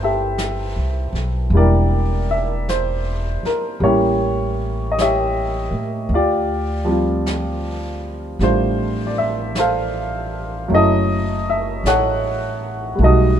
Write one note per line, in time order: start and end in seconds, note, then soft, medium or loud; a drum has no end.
0.00 0.72 G1 medium
0.00 1.51 G3 soft
0.00 1.53 A3 soft
0.00 1.53 D4 soft
0.00 1.50 E4 soft
0.00 1.51 G4 soft
0.00 0.03 A4 soft
0.00 1.52 A4 soft
0.00 1.55 B4 soft
0.00 1.55 C5 medium
0.04 1.13 E5 medium
0.38 brush sweep soft
0.38 snare soft
0.38 hi-hat pedal soft
0.76 1.12 C2 soft
1.13 1.49 B1 medium
1.13 snare soft
1.50 3.38 E1 medium
1.50 3.78 G3 soft
1.50 3.80 A#3 soft
1.50 brush sweep soft
1.55 3.83 D4 soft
1.55 3.83 E4 soft
1.55 3.81 G4 soft
1.55 3.44 A#4 medium
1.55 2.27 D5 medium
2.31 2.66 E5 medium
2.69 3.47 C5 medium
2.69 brush sweep soft
2.69 snare soft
2.69 hi-hat pedal soft
3.43 3.81 A#4 medium
3.43 muted upright bass stroke soft
3.43 snare soft
3.80 5.67 A1 medium
3.80 6.10 G3 soft
3.80 6.10 A#3 soft
3.80 4.96 C#5 medium
3.80 brush sweep soft
3.84 6.12 C#4 soft
3.84 6.08 E4 soft
3.84 4.99 G4 medium
4.92 4.97 D#5 medium
4.98 6.09 G4 medium
4.98 6.09 C#5 soft
4.98 6.10 E5 medium
4.98 brush sweep soft
4.98 snare soft
4.98 hi-hat pedal soft
5.71 6.08 A2 medium
6.09 8.35 D2 medium
6.09 brush sweep soft
6.14 6.88 F4 medium
6.14 8.38 G4 medium
6.14 8.49 D5 medium
6.85 10.68 F3 soft
6.85 8.39 G3 soft
6.85 10.70 C4 soft
6.89 8.40 F4 soft
7.26 brush sweep soft
7.26 snare soft
7.26 hi-hat pedal soft
8.39 10.65 A1 medium
8.39 10.70 G3 soft
8.39 10.68 A3 soft
8.39 10.66 D4 soft
8.39 10.66 F4 medium
8.39 brush sweep soft
8.39 snare soft
8.43 9.10 C5 medium
9.07 9.16 D5 medium
9.18 9.53 E5 medium
9.55 10.68 A4 medium
9.55 10.67 C5 medium
9.55 brush sweep soft
9.55 snare soft
9.55 hi-hat pedal soft
9.60 10.68 F5 medium
10.68 11.80 F#1 medium
10.68 12.98 F#3 soft
10.68 12.97 A3 soft
10.68 13.00 C#4 soft
10.68 brush sweep soft
10.74 13.01 E4 medium
10.74 11.85 A4 medium
10.74 11.44 D#5 medium
11.50 11.88 E5 medium
11.84 12.95 A1 medium
11.84 12.96 A4 medium
11.84 12.96 C#5 medium
11.84 brush sweep soft
11.84 snare soft
11.84 hi-hat pedal soft
11.88 12.97 F#5 medium
12.95 13.40 B1 medium
12.95 13.40 G3 soft
12.95 13.40 A3 soft
13.00 13.40 D#4 soft
13.00 13.05 F#4 medium
13.00 13.40 A4 medium
13.00 brush sweep soft
13.04 13.40 F#4 soft
13.04 13.40 D#5 medium